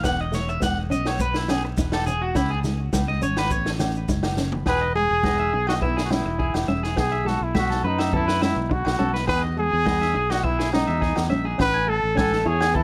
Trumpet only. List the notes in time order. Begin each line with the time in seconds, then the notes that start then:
4.68 B4
4.96 G#4
5.69 F#4
5.81 E4
6.05 F#4
6.11 E4
6.99 G#4
7.28 F#4
7.44 E4
7.59 F#4
7.87 D#4
8.15 E4
8.44 E4
8.72 F#4
9.29 B4
9.59 G#4
10.32 F#4
10.45 E4
10.73 D#4
11.61 B4
11.89 A4
12.19 A4
12.47 G#4
12.76 E4